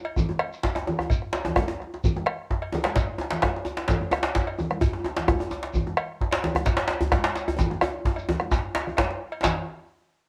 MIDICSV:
0, 0, Header, 1, 5, 480
1, 0, Start_track
1, 0, Tempo, 463320
1, 178, Time_signature, 4, 2, 24, 8
1, 10659, End_track
2, 0, Start_track
2, 0, Title_t, "Bombo"
2, 170, Note_on_c, 9, 37, 34
2, 170, Note_on_c, 9, 43, 98
2, 273, Note_off_c, 9, 37, 0
2, 273, Note_off_c, 9, 43, 0
2, 407, Note_on_c, 9, 37, 98
2, 510, Note_off_c, 9, 37, 0
2, 659, Note_on_c, 9, 43, 89
2, 762, Note_off_c, 9, 43, 0
2, 1022, Note_on_c, 9, 37, 81
2, 1126, Note_off_c, 9, 37, 0
2, 1139, Note_on_c, 9, 43, 109
2, 1243, Note_off_c, 9, 43, 0
2, 1262, Note_on_c, 9, 37, 30
2, 1366, Note_off_c, 9, 37, 0
2, 1373, Note_on_c, 9, 37, 28
2, 1476, Note_off_c, 9, 37, 0
2, 1503, Note_on_c, 9, 37, 25
2, 1607, Note_off_c, 9, 37, 0
2, 1617, Note_on_c, 9, 37, 97
2, 1617, Note_on_c, 9, 43, 92
2, 1721, Note_off_c, 9, 37, 0
2, 1721, Note_off_c, 9, 43, 0
2, 1868, Note_on_c, 9, 37, 32
2, 1971, Note_off_c, 9, 37, 0
2, 2113, Note_on_c, 9, 43, 107
2, 2217, Note_off_c, 9, 43, 0
2, 2351, Note_on_c, 9, 37, 110
2, 2454, Note_off_c, 9, 37, 0
2, 2596, Note_on_c, 9, 43, 94
2, 2700, Note_off_c, 9, 43, 0
2, 2720, Note_on_c, 9, 37, 30
2, 2824, Note_off_c, 9, 37, 0
2, 2953, Note_on_c, 9, 37, 83
2, 3057, Note_off_c, 9, 37, 0
2, 3069, Note_on_c, 9, 43, 111
2, 3172, Note_off_c, 9, 43, 0
2, 3439, Note_on_c, 9, 37, 28
2, 3542, Note_off_c, 9, 37, 0
2, 3554, Note_on_c, 9, 37, 97
2, 3554, Note_on_c, 9, 43, 94
2, 3658, Note_off_c, 9, 37, 0
2, 3658, Note_off_c, 9, 43, 0
2, 4027, Note_on_c, 9, 43, 101
2, 4131, Note_off_c, 9, 43, 0
2, 4277, Note_on_c, 9, 37, 103
2, 4380, Note_off_c, 9, 37, 0
2, 4514, Note_on_c, 9, 43, 100
2, 4617, Note_off_c, 9, 43, 0
2, 4636, Note_on_c, 9, 37, 32
2, 4739, Note_off_c, 9, 37, 0
2, 4876, Note_on_c, 9, 37, 78
2, 4979, Note_off_c, 9, 37, 0
2, 4995, Note_on_c, 9, 43, 109
2, 5099, Note_off_c, 9, 43, 0
2, 5359, Note_on_c, 9, 37, 30
2, 5463, Note_off_c, 9, 37, 0
2, 5471, Note_on_c, 9, 37, 95
2, 5471, Note_on_c, 9, 43, 103
2, 5575, Note_off_c, 9, 37, 0
2, 5575, Note_off_c, 9, 43, 0
2, 5951, Note_on_c, 9, 43, 99
2, 6054, Note_off_c, 9, 43, 0
2, 6185, Note_on_c, 9, 37, 110
2, 6289, Note_off_c, 9, 37, 0
2, 6430, Note_on_c, 9, 43, 90
2, 6534, Note_off_c, 9, 43, 0
2, 6564, Note_on_c, 9, 37, 30
2, 6667, Note_off_c, 9, 37, 0
2, 6795, Note_on_c, 9, 37, 91
2, 6899, Note_off_c, 9, 37, 0
2, 6906, Note_on_c, 9, 43, 116
2, 7009, Note_off_c, 9, 43, 0
2, 7263, Note_on_c, 9, 37, 34
2, 7367, Note_off_c, 9, 37, 0
2, 7375, Note_on_c, 9, 37, 113
2, 7375, Note_on_c, 9, 43, 106
2, 7479, Note_off_c, 9, 37, 0
2, 7479, Note_off_c, 9, 43, 0
2, 7863, Note_on_c, 9, 43, 112
2, 7967, Note_off_c, 9, 43, 0
2, 7981, Note_on_c, 9, 37, 39
2, 8085, Note_off_c, 9, 37, 0
2, 8094, Note_on_c, 9, 37, 116
2, 8198, Note_off_c, 9, 37, 0
2, 8339, Note_on_c, 9, 43, 100
2, 8442, Note_off_c, 9, 43, 0
2, 8700, Note_on_c, 9, 37, 88
2, 8803, Note_off_c, 9, 37, 0
2, 8821, Note_on_c, 9, 37, 33
2, 8821, Note_on_c, 9, 43, 109
2, 8925, Note_off_c, 9, 37, 0
2, 8925, Note_off_c, 9, 43, 0
2, 9188, Note_on_c, 9, 37, 29
2, 9292, Note_off_c, 9, 37, 0
2, 9305, Note_on_c, 9, 37, 96
2, 9305, Note_on_c, 9, 43, 88
2, 9408, Note_off_c, 9, 37, 0
2, 9408, Note_off_c, 9, 43, 0
2, 9780, Note_on_c, 9, 43, 87
2, 9884, Note_off_c, 9, 43, 0
2, 10659, End_track
3, 0, Start_track
3, 0, Title_t, "Djembe"
3, 179, Note_on_c, 9, 64, 73
3, 283, Note_off_c, 9, 64, 0
3, 300, Note_on_c, 9, 62, 58
3, 300, Note_on_c, 9, 63, 58
3, 404, Note_off_c, 9, 62, 0
3, 404, Note_off_c, 9, 63, 0
3, 427, Note_on_c, 9, 62, 25
3, 531, Note_off_c, 9, 62, 0
3, 656, Note_on_c, 9, 62, 78
3, 668, Note_off_c, 9, 62, 0
3, 668, Note_on_c, 9, 62, 80
3, 772, Note_off_c, 9, 62, 0
3, 785, Note_on_c, 9, 63, 90
3, 888, Note_off_c, 9, 63, 0
3, 902, Note_on_c, 9, 63, 83
3, 902, Note_on_c, 9, 64, 85
3, 903, Note_off_c, 9, 63, 0
3, 903, Note_on_c, 9, 63, 84
3, 1005, Note_off_c, 9, 64, 0
3, 1007, Note_off_c, 9, 63, 0
3, 1023, Note_on_c, 9, 63, 80
3, 1028, Note_on_c, 9, 62, 64
3, 1126, Note_off_c, 9, 63, 0
3, 1131, Note_off_c, 9, 62, 0
3, 1153, Note_on_c, 9, 62, 24
3, 1257, Note_off_c, 9, 62, 0
3, 1276, Note_on_c, 9, 62, 28
3, 1375, Note_off_c, 9, 62, 0
3, 1375, Note_on_c, 9, 62, 86
3, 1396, Note_off_c, 9, 62, 0
3, 1396, Note_on_c, 9, 62, 85
3, 1499, Note_off_c, 9, 62, 0
3, 1500, Note_on_c, 9, 63, 94
3, 1522, Note_on_c, 9, 62, 24
3, 1522, Note_on_c, 9, 64, 64
3, 1603, Note_off_c, 9, 63, 0
3, 1615, Note_on_c, 9, 63, 93
3, 1625, Note_off_c, 9, 62, 0
3, 1625, Note_off_c, 9, 64, 0
3, 1642, Note_off_c, 9, 63, 0
3, 1642, Note_on_c, 9, 63, 85
3, 1742, Note_off_c, 9, 63, 0
3, 1742, Note_on_c, 9, 63, 89
3, 1765, Note_on_c, 9, 64, 39
3, 1845, Note_off_c, 9, 63, 0
3, 1869, Note_off_c, 9, 64, 0
3, 1884, Note_on_c, 9, 62, 47
3, 1988, Note_off_c, 9, 62, 0
3, 2010, Note_on_c, 9, 62, 67
3, 2113, Note_off_c, 9, 62, 0
3, 2125, Note_on_c, 9, 64, 78
3, 2229, Note_off_c, 9, 64, 0
3, 2244, Note_on_c, 9, 62, 62
3, 2244, Note_on_c, 9, 63, 67
3, 2348, Note_off_c, 9, 62, 0
3, 2348, Note_off_c, 9, 63, 0
3, 2598, Note_on_c, 9, 62, 84
3, 2702, Note_off_c, 9, 62, 0
3, 2824, Note_on_c, 9, 63, 81
3, 2841, Note_off_c, 9, 63, 0
3, 2841, Note_on_c, 9, 63, 85
3, 2841, Note_on_c, 9, 64, 87
3, 2942, Note_on_c, 9, 62, 87
3, 2944, Note_off_c, 9, 63, 0
3, 2944, Note_off_c, 9, 64, 0
3, 2968, Note_off_c, 9, 62, 0
3, 2968, Note_on_c, 9, 62, 72
3, 3064, Note_off_c, 9, 62, 0
3, 3064, Note_on_c, 9, 62, 88
3, 3168, Note_off_c, 9, 62, 0
3, 3300, Note_on_c, 9, 63, 82
3, 3329, Note_on_c, 9, 62, 85
3, 3403, Note_off_c, 9, 63, 0
3, 3426, Note_off_c, 9, 62, 0
3, 3426, Note_on_c, 9, 62, 90
3, 3451, Note_off_c, 9, 62, 0
3, 3451, Note_on_c, 9, 62, 24
3, 3451, Note_on_c, 9, 64, 57
3, 3546, Note_off_c, 9, 62, 0
3, 3546, Note_on_c, 9, 62, 94
3, 3555, Note_off_c, 9, 64, 0
3, 3573, Note_on_c, 9, 63, 78
3, 3650, Note_off_c, 9, 62, 0
3, 3676, Note_off_c, 9, 63, 0
3, 3694, Note_on_c, 9, 62, 57
3, 3782, Note_on_c, 9, 63, 82
3, 3798, Note_off_c, 9, 62, 0
3, 3886, Note_off_c, 9, 63, 0
3, 3908, Note_on_c, 9, 62, 73
3, 4011, Note_off_c, 9, 62, 0
3, 4019, Note_on_c, 9, 62, 89
3, 4049, Note_on_c, 9, 64, 71
3, 4122, Note_off_c, 9, 62, 0
3, 4153, Note_off_c, 9, 64, 0
3, 4160, Note_on_c, 9, 63, 59
3, 4262, Note_off_c, 9, 63, 0
3, 4262, Note_on_c, 9, 63, 96
3, 4366, Note_off_c, 9, 63, 0
3, 4380, Note_on_c, 9, 62, 93
3, 4484, Note_off_c, 9, 62, 0
3, 4506, Note_on_c, 9, 62, 86
3, 4513, Note_off_c, 9, 62, 0
3, 4513, Note_on_c, 9, 62, 73
3, 4617, Note_off_c, 9, 62, 0
3, 4750, Note_on_c, 9, 63, 84
3, 4750, Note_on_c, 9, 64, 74
3, 4853, Note_off_c, 9, 63, 0
3, 4853, Note_off_c, 9, 64, 0
3, 4874, Note_on_c, 9, 62, 64
3, 4978, Note_off_c, 9, 62, 0
3, 4984, Note_on_c, 9, 64, 102
3, 5088, Note_off_c, 9, 64, 0
3, 5109, Note_on_c, 9, 63, 89
3, 5213, Note_off_c, 9, 63, 0
3, 5225, Note_on_c, 9, 63, 85
3, 5240, Note_on_c, 9, 62, 77
3, 5328, Note_off_c, 9, 63, 0
3, 5343, Note_off_c, 9, 62, 0
3, 5351, Note_on_c, 9, 62, 93
3, 5366, Note_off_c, 9, 62, 0
3, 5366, Note_on_c, 9, 62, 24
3, 5366, Note_on_c, 9, 64, 60
3, 5470, Note_off_c, 9, 62, 0
3, 5470, Note_off_c, 9, 64, 0
3, 5470, Note_on_c, 9, 64, 127
3, 5478, Note_on_c, 9, 63, 68
3, 5573, Note_off_c, 9, 64, 0
3, 5582, Note_off_c, 9, 63, 0
3, 5596, Note_on_c, 9, 63, 78
3, 5602, Note_on_c, 9, 62, 57
3, 5700, Note_off_c, 9, 63, 0
3, 5706, Note_off_c, 9, 62, 0
3, 5709, Note_on_c, 9, 63, 88
3, 5812, Note_off_c, 9, 63, 0
3, 5830, Note_on_c, 9, 62, 73
3, 5934, Note_off_c, 9, 62, 0
3, 5961, Note_on_c, 9, 64, 73
3, 6064, Note_off_c, 9, 64, 0
3, 6079, Note_on_c, 9, 62, 58
3, 6079, Note_on_c, 9, 63, 64
3, 6182, Note_off_c, 9, 62, 0
3, 6182, Note_off_c, 9, 63, 0
3, 6437, Note_on_c, 9, 62, 80
3, 6541, Note_off_c, 9, 62, 0
3, 6552, Note_on_c, 9, 62, 113
3, 6656, Note_off_c, 9, 62, 0
3, 6671, Note_on_c, 9, 62, 75
3, 6676, Note_on_c, 9, 63, 77
3, 6676, Note_on_c, 9, 64, 76
3, 6775, Note_off_c, 9, 62, 0
3, 6779, Note_off_c, 9, 63, 0
3, 6779, Note_off_c, 9, 64, 0
3, 6785, Note_on_c, 9, 64, 85
3, 6799, Note_on_c, 9, 62, 64
3, 6889, Note_off_c, 9, 64, 0
3, 6899, Note_off_c, 9, 62, 0
3, 6899, Note_on_c, 9, 62, 89
3, 7003, Note_off_c, 9, 62, 0
3, 7012, Note_on_c, 9, 62, 104
3, 7115, Note_off_c, 9, 62, 0
3, 7125, Note_on_c, 9, 62, 93
3, 7158, Note_off_c, 9, 62, 0
3, 7158, Note_on_c, 9, 62, 88
3, 7260, Note_on_c, 9, 64, 90
3, 7262, Note_off_c, 9, 62, 0
3, 7279, Note_off_c, 9, 64, 0
3, 7279, Note_on_c, 9, 62, 26
3, 7279, Note_on_c, 9, 64, 66
3, 7378, Note_off_c, 9, 62, 0
3, 7378, Note_on_c, 9, 62, 86
3, 7382, Note_off_c, 9, 64, 0
3, 7397, Note_on_c, 9, 63, 73
3, 7481, Note_off_c, 9, 62, 0
3, 7500, Note_off_c, 9, 63, 0
3, 7501, Note_on_c, 9, 62, 112
3, 7512, Note_off_c, 9, 62, 0
3, 7512, Note_on_c, 9, 62, 56
3, 7615, Note_off_c, 9, 62, 0
3, 7622, Note_on_c, 9, 62, 75
3, 7725, Note_off_c, 9, 62, 0
3, 7750, Note_on_c, 9, 64, 87
3, 7854, Note_off_c, 9, 64, 0
3, 7860, Note_on_c, 9, 63, 102
3, 7871, Note_on_c, 9, 64, 80
3, 7964, Note_off_c, 9, 63, 0
3, 7975, Note_off_c, 9, 64, 0
3, 7990, Note_on_c, 9, 62, 62
3, 7990, Note_on_c, 9, 63, 61
3, 8094, Note_off_c, 9, 62, 0
3, 8094, Note_off_c, 9, 63, 0
3, 8104, Note_on_c, 9, 63, 108
3, 8207, Note_off_c, 9, 63, 0
3, 8344, Note_on_c, 9, 62, 78
3, 8345, Note_on_c, 9, 63, 106
3, 8448, Note_off_c, 9, 62, 0
3, 8449, Note_off_c, 9, 63, 0
3, 8585, Note_on_c, 9, 63, 108
3, 8588, Note_off_c, 9, 63, 0
3, 8588, Note_on_c, 9, 63, 83
3, 8588, Note_on_c, 9, 64, 76
3, 8691, Note_off_c, 9, 63, 0
3, 8691, Note_off_c, 9, 64, 0
3, 8713, Note_on_c, 9, 62, 62
3, 8816, Note_off_c, 9, 62, 0
3, 8821, Note_on_c, 9, 63, 119
3, 8925, Note_off_c, 9, 63, 0
3, 9063, Note_on_c, 9, 62, 111
3, 9071, Note_off_c, 9, 62, 0
3, 9071, Note_on_c, 9, 62, 85
3, 9174, Note_off_c, 9, 62, 0
3, 9195, Note_on_c, 9, 64, 62
3, 9299, Note_off_c, 9, 64, 0
3, 9306, Note_on_c, 9, 62, 118
3, 9315, Note_on_c, 9, 63, 67
3, 9409, Note_off_c, 9, 62, 0
3, 9419, Note_off_c, 9, 63, 0
3, 9434, Note_on_c, 9, 62, 57
3, 9538, Note_off_c, 9, 62, 0
3, 9778, Note_on_c, 9, 62, 123
3, 9789, Note_on_c, 9, 64, 80
3, 9881, Note_off_c, 9, 62, 0
3, 9893, Note_off_c, 9, 64, 0
3, 10659, End_track
4, 0, Start_track
4, 0, Title_t, "Shekere"
4, 179, Note_on_c, 9, 82, 58
4, 282, Note_off_c, 9, 82, 0
4, 549, Note_on_c, 9, 82, 21
4, 653, Note_off_c, 9, 82, 0
4, 675, Note_on_c, 9, 82, 18
4, 778, Note_off_c, 9, 82, 0
4, 1151, Note_on_c, 9, 82, 61
4, 1254, Note_off_c, 9, 82, 0
4, 1398, Note_on_c, 9, 82, 20
4, 1502, Note_off_c, 9, 82, 0
4, 2116, Note_on_c, 9, 82, 61
4, 2220, Note_off_c, 9, 82, 0
4, 2840, Note_on_c, 9, 82, 15
4, 2944, Note_off_c, 9, 82, 0
4, 3071, Note_on_c, 9, 82, 62
4, 3175, Note_off_c, 9, 82, 0
4, 3798, Note_on_c, 9, 82, 19
4, 3902, Note_off_c, 9, 82, 0
4, 4034, Note_on_c, 9, 82, 54
4, 4137, Note_off_c, 9, 82, 0
4, 4750, Note_on_c, 9, 82, 17
4, 4853, Note_off_c, 9, 82, 0
4, 4988, Note_on_c, 9, 82, 60
4, 5091, Note_off_c, 9, 82, 0
4, 5708, Note_on_c, 9, 82, 21
4, 5811, Note_off_c, 9, 82, 0
4, 5941, Note_on_c, 9, 82, 59
4, 6044, Note_off_c, 9, 82, 0
4, 6898, Note_on_c, 9, 82, 62
4, 7002, Note_off_c, 9, 82, 0
4, 7628, Note_on_c, 9, 82, 22
4, 7731, Note_off_c, 9, 82, 0
4, 7864, Note_on_c, 9, 82, 69
4, 7968, Note_off_c, 9, 82, 0
4, 8108, Note_on_c, 9, 82, 21
4, 8211, Note_off_c, 9, 82, 0
4, 8477, Note_on_c, 9, 82, 21
4, 8581, Note_off_c, 9, 82, 0
4, 8821, Note_on_c, 9, 82, 67
4, 8925, Note_off_c, 9, 82, 0
4, 9302, Note_on_c, 9, 82, 19
4, 9406, Note_off_c, 9, 82, 0
4, 9781, Note_on_c, 9, 82, 86
4, 9885, Note_off_c, 9, 82, 0
4, 10659, End_track
5, 0, Start_track
5, 0, Title_t, "Drums"
5, 51, Note_on_c, 9, 56, 59
5, 154, Note_off_c, 9, 56, 0
5, 194, Note_on_c, 9, 63, 29
5, 194, Note_on_c, 9, 64, 88
5, 298, Note_off_c, 9, 63, 0
5, 298, Note_off_c, 9, 64, 0
5, 317, Note_on_c, 9, 63, 64
5, 408, Note_on_c, 9, 56, 75
5, 420, Note_off_c, 9, 63, 0
5, 441, Note_on_c, 9, 63, 31
5, 511, Note_off_c, 9, 56, 0
5, 544, Note_off_c, 9, 63, 0
5, 777, Note_on_c, 9, 56, 55
5, 881, Note_off_c, 9, 56, 0
5, 921, Note_on_c, 9, 64, 86
5, 1025, Note_off_c, 9, 64, 0
5, 1136, Note_on_c, 9, 56, 58
5, 1240, Note_off_c, 9, 56, 0
5, 1527, Note_on_c, 9, 63, 24
5, 1527, Note_on_c, 9, 64, 66
5, 1625, Note_on_c, 9, 56, 57
5, 1631, Note_off_c, 9, 63, 0
5, 1631, Note_off_c, 9, 64, 0
5, 1642, Note_on_c, 9, 63, 83
5, 1728, Note_off_c, 9, 56, 0
5, 1745, Note_off_c, 9, 63, 0
5, 2120, Note_on_c, 9, 64, 81
5, 2224, Note_off_c, 9, 64, 0
5, 2239, Note_on_c, 9, 63, 60
5, 2343, Note_off_c, 9, 63, 0
5, 2345, Note_on_c, 9, 56, 72
5, 2368, Note_on_c, 9, 63, 29
5, 2448, Note_off_c, 9, 56, 0
5, 2471, Note_off_c, 9, 63, 0
5, 2716, Note_on_c, 9, 56, 51
5, 2820, Note_off_c, 9, 56, 0
5, 2847, Note_on_c, 9, 64, 89
5, 2951, Note_off_c, 9, 64, 0
5, 2965, Note_on_c, 9, 63, 65
5, 3068, Note_off_c, 9, 63, 0
5, 3074, Note_on_c, 9, 56, 57
5, 3178, Note_off_c, 9, 56, 0
5, 3203, Note_on_c, 9, 63, 24
5, 3307, Note_off_c, 9, 63, 0
5, 3444, Note_on_c, 9, 64, 66
5, 3546, Note_on_c, 9, 56, 57
5, 3548, Note_off_c, 9, 64, 0
5, 3559, Note_on_c, 9, 63, 80
5, 3650, Note_off_c, 9, 56, 0
5, 3663, Note_off_c, 9, 63, 0
5, 4041, Note_on_c, 9, 64, 94
5, 4144, Note_off_c, 9, 64, 0
5, 4155, Note_on_c, 9, 63, 60
5, 4259, Note_off_c, 9, 63, 0
5, 4267, Note_on_c, 9, 56, 67
5, 4370, Note_off_c, 9, 56, 0
5, 4632, Note_on_c, 9, 56, 50
5, 4736, Note_off_c, 9, 56, 0
5, 4765, Note_on_c, 9, 64, 81
5, 4869, Note_off_c, 9, 64, 0
5, 4888, Note_on_c, 9, 63, 59
5, 4984, Note_on_c, 9, 56, 56
5, 4992, Note_off_c, 9, 63, 0
5, 5087, Note_off_c, 9, 56, 0
5, 5134, Note_on_c, 9, 63, 21
5, 5238, Note_off_c, 9, 63, 0
5, 5380, Note_on_c, 9, 64, 57
5, 5469, Note_on_c, 9, 56, 59
5, 5484, Note_off_c, 9, 64, 0
5, 5490, Note_on_c, 9, 63, 73
5, 5573, Note_off_c, 9, 56, 0
5, 5594, Note_off_c, 9, 63, 0
5, 5963, Note_on_c, 9, 64, 74
5, 6067, Note_off_c, 9, 64, 0
5, 6079, Note_on_c, 9, 63, 52
5, 6183, Note_off_c, 9, 63, 0
5, 6189, Note_on_c, 9, 56, 67
5, 6292, Note_off_c, 9, 56, 0
5, 6540, Note_on_c, 9, 56, 50
5, 6644, Note_off_c, 9, 56, 0
5, 6669, Note_on_c, 9, 64, 72
5, 6773, Note_off_c, 9, 64, 0
5, 6792, Note_on_c, 9, 63, 52
5, 6896, Note_off_c, 9, 63, 0
5, 6903, Note_on_c, 9, 56, 48
5, 7007, Note_off_c, 9, 56, 0
5, 7267, Note_on_c, 9, 64, 57
5, 7371, Note_off_c, 9, 64, 0
5, 7387, Note_on_c, 9, 56, 47
5, 7392, Note_on_c, 9, 63, 75
5, 7491, Note_off_c, 9, 56, 0
5, 7495, Note_off_c, 9, 63, 0
5, 7749, Note_on_c, 9, 56, 51
5, 7853, Note_off_c, 9, 56, 0
5, 7871, Note_on_c, 9, 63, 23
5, 7871, Note_on_c, 9, 64, 81
5, 7975, Note_off_c, 9, 63, 0
5, 7975, Note_off_c, 9, 64, 0
5, 7994, Note_on_c, 9, 63, 54
5, 8096, Note_on_c, 9, 56, 67
5, 8097, Note_off_c, 9, 63, 0
5, 8110, Note_on_c, 9, 63, 24
5, 8199, Note_off_c, 9, 56, 0
5, 8214, Note_off_c, 9, 63, 0
5, 8455, Note_on_c, 9, 56, 47
5, 8474, Note_on_c, 9, 63, 25
5, 8558, Note_off_c, 9, 56, 0
5, 8578, Note_off_c, 9, 63, 0
5, 8588, Note_on_c, 9, 63, 22
5, 8588, Note_on_c, 9, 64, 72
5, 8692, Note_off_c, 9, 63, 0
5, 8692, Note_off_c, 9, 64, 0
5, 8713, Note_on_c, 9, 63, 59
5, 8816, Note_off_c, 9, 63, 0
5, 8821, Note_on_c, 9, 56, 47
5, 8832, Note_on_c, 9, 63, 24
5, 8924, Note_off_c, 9, 56, 0
5, 8936, Note_off_c, 9, 63, 0
5, 9193, Note_on_c, 9, 64, 56
5, 9294, Note_on_c, 9, 56, 53
5, 9296, Note_off_c, 9, 64, 0
5, 9321, Note_on_c, 9, 63, 71
5, 9397, Note_off_c, 9, 56, 0
5, 9424, Note_off_c, 9, 63, 0
5, 9656, Note_on_c, 9, 56, 48
5, 9760, Note_off_c, 9, 56, 0
5, 9771, Note_on_c, 9, 56, 72
5, 9799, Note_on_c, 9, 64, 86
5, 9875, Note_off_c, 9, 56, 0
5, 9903, Note_off_c, 9, 64, 0
5, 10659, End_track
0, 0, End_of_file